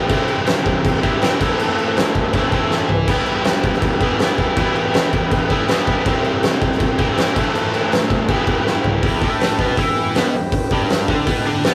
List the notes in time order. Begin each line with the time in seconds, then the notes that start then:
Already playing: E3 B3 E4
0.09 C3 E3 G3 C4 E4 G4 C5 E5, kick, crash
0.28 crash
0.46 snare, crash
0.66 kick, crash
0.85 kick, crash
1.03 C3 E3 G3 C4 E4, kick, crash
1.21 C3 E3 G3 C4 E4, snare, crash
1.40 A2 E3 A3 C4 E4 A4 C5 E5, kick, crash
1.59 crash
1.78 crash
1.97 snare, crash
2.15 kick, crash
2.33 A2 E3 A3 C4, kick, crash
2.37 E4
2.52 A2 E3 A3 C4 E4, kick, crash
2.71 snare
2.89 floor tom
3.08 E3 G3 B3 G4 B4 E5, kick, crash
3.12 E4
3.26 crash
3.44 snare, crash
3.63 kick, crash
3.73 snare
3.82 kick, crash
4.00 E3 G3 B3 E4, kick, crash
4.19 E3 G3 B3 E4, snare, crash
4.38 kick, crash
4.57 E3 G3 B3 E4, kick, crash
4.75 crash
4.94 snare, crash
5.13 kick, crash
5.31 kick, crash
5.50 G3 B3 E4, kick, crash
5.54 E3
5.68 E3 G3 B3 E4 B5, snare, crash
5.87 kick, crash
6.05 C3 E3 G3 C4 E4 G4 C5 E5, kick, crash
6.24 crash
6.43 snare, crash
6.62 kick, crash
6.72 snare
6.80 kick, crash
6.98 C3 E3 G3 C4 E4, kick, crash
7.17 C3 E3 G3 C4 E4, snare, crash
7.35 A2 E3 A3 C4 E4 A4 C5 E5, kick, crash
7.55 crash
7.74 crash
7.92 snare, crash
8.10 kick, crash
8.28 E3 G3 B3 E4 G4 B4 E5, kick, crash
8.47 kick, crash
8.67 snare
8.84 floor tom
9.03 E2 E3 G4 B4 E5, kick, open hi-hat
9.22 A2 A3, kick
9.40 snare, open hi-hat
9.59 B2 B3, kick
9.77 E3 E4, kick, open hi-hat
10.15 B2 B3, snare, open hi-hat
10.34 E2
10.52 kick, open hi-hat
10.71 G2 G3, kick
10.89 snare, open hi-hat
11.08 D3 D4, kick
11.27 B2 B3, kick, open hi-hat
11.46 D3 D4
11.64 B2 B3, snare, open hi-hat